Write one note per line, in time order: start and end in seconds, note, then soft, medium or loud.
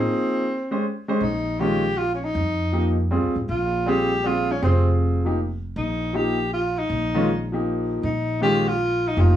0.00 0.43 F3 soft
0.00 0.43 A#3 soft
0.00 0.85 C4 medium
0.00 0.43 D#4 soft
0.00 0.44 G#4 medium
0.71 0.82 G#3 medium
0.71 0.83 C#4 medium
0.71 0.83 G4 medium
0.71 0.83 C5 medium
1.08 1.20 G#3 medium
1.08 1.20 C#4 medium
1.08 1.20 G4 medium
1.08 1.21 C5 medium
1.20 2.31 A#1 medium
1.20 1.62 D#4 medium
1.60 1.82 D#3 medium
1.60 1.82 G#3 soft
1.60 1.82 C#4 medium
1.60 1.83 F4 medium
1.60 1.99 G4 loud
1.98 2.13 F4 medium
2.15 2.26 C#4 medium
2.24 2.99 D#4 medium
2.35 3.19 F2 medium
2.72 2.95 F3 medium
2.72 2.95 A#3 soft
2.72 2.96 D#4 soft
2.72 2.96 G4 medium
3.11 3.33 G3 medium
3.11 3.33 C4 medium
3.11 3.34 F4 medium
3.11 3.34 G#4 medium
3.23 3.35 D#2 medium
3.36 3.48 A1 medium
3.49 4.58 A#1 medium
3.49 3.91 F4 medium
3.86 4.09 G3 medium
3.86 4.09 C4 medium
3.86 4.09 F4 medium
3.86 4.28 G4 loud
3.86 4.10 G#4 medium
4.24 4.47 G3 medium
4.24 4.47 C4 soft
4.24 4.47 F4 medium
4.24 4.53 F4 medium
4.24 4.47 G#4 medium
4.52 4.63 C#4 medium
4.62 5.72 F1 medium
4.62 5.20 C4 medium
4.62 4.98 C4 medium
4.62 5.21 F4 medium
4.62 5.20 G4 medium
4.62 5.21 G#4 medium
5.25 5.37 F3 soft
5.25 5.37 A#3 soft
5.25 5.37 D#4 medium
5.25 5.38 G4 medium
5.76 6.86 A#1 medium
5.76 6.17 D#4 medium
6.13 6.36 F3 medium
6.13 6.36 A#3 soft
6.13 6.37 D#4 medium
6.13 6.37 G4 medium
6.13 6.53 G4 loud
6.54 6.80 F4 medium
6.79 7.53 D#4 medium
6.90 7.99 A#1 medium
7.14 7.26 D#3 medium
7.14 7.26 G#3 medium
7.14 7.27 C#4 medium
7.14 7.27 F4 medium
7.52 8.01 F3 medium
7.52 8.01 A#3 soft
7.52 8.01 D#4 soft
7.52 8.02 G4 medium
8.03 9.13 A#1 medium
8.03 8.39 D#4 medium
8.41 8.63 D#3 medium
8.41 8.64 G#3 medium
8.41 8.64 C#4 medium
8.41 8.64 F4 medium
8.41 8.70 G4 loud
8.69 9.09 F4 loud
9.08 9.22 D#4 medium
9.17 9.36 F1 medium
9.17 9.36 F3 medium
9.17 9.36 A#3 medium
9.17 9.36 D#4 medium
9.17 9.36 F4 medium
9.17 9.36 G4 medium